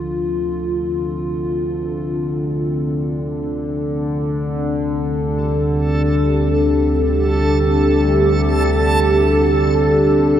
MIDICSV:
0, 0, Header, 1, 4, 480
1, 0, Start_track
1, 0, Key_signature, -1, "minor"
1, 0, Tempo, 500000
1, 9983, End_track
2, 0, Start_track
2, 0, Title_t, "Synth texture"
2, 0, Program_c, 0, 99
2, 4517, Note_on_c, 0, 69, 78
2, 9983, Note_off_c, 0, 69, 0
2, 9983, End_track
3, 0, Start_track
3, 0, Title_t, "Analog synth pad"
3, 0, Program_c, 1, 89
3, 0, Note_on_c, 1, 60, 79
3, 0, Note_on_c, 1, 62, 80
3, 0, Note_on_c, 1, 65, 62
3, 0, Note_on_c, 1, 69, 77
3, 4813, Note_on_c, 1, 67, 70
3, 5125, Note_off_c, 1, 65, 0
3, 9983, Note_off_c, 1, 60, 0
3, 9983, Note_off_c, 1, 62, 0
3, 9983, Note_off_c, 1, 67, 0
3, 9983, Note_off_c, 1, 69, 0
3, 9983, End_track
4, 0, Start_track
4, 0, Title_t, "Synth drone"
4, 0, Program_c, 2, 95
4, 0, Note_on_c, 2, 38, 67
4, 0, Note_on_c, 2, 50, 63
4, 9983, Note_off_c, 2, 38, 0
4, 9983, Note_off_c, 2, 50, 0
4, 9983, End_track
0, 0, End_of_file